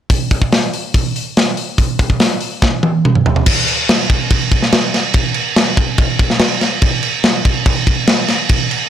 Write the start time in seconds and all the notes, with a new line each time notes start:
0.10 kick, open hi-hat
0.31 kick, open hi-hat
0.42 kick
0.52 snare, open hi-hat
0.73 open hi-hat
0.94 kick, open hi-hat
1.16 open hi-hat
1.37 snare, open hi-hat
1.57 open hi-hat
1.78 kick, open hi-hat
1.99 kick, open hi-hat
2.10 kick
2.20 snare, open hi-hat
2.40 open hi-hat
2.62 kick, snare
2.83 high tom
3.05 mid tom
3.15 mid tom
3.26 floor tom
3.36 floor tom
3.46 kick, crash
3.68 crash
3.89 snare, crash
4.10 kick, crash
4.30 kick, crash
4.52 kick, crash
4.63 snare
4.72 snare, crash
4.94 snare, crash
5.14 kick, crash
5.34 crash
5.56 snare, crash
5.77 kick, crash
5.98 kick, crash
6.19 kick, crash
6.30 snare
6.39 snare, crash
6.61 snare, crash
6.82 kick, crash
7.03 crash
7.24 snare, crash
7.45 kick, crash
7.66 kick, crash
7.87 kick, crash
8.07 snare, crash
8.28 snare, crash
8.49 kick, crash
8.71 crash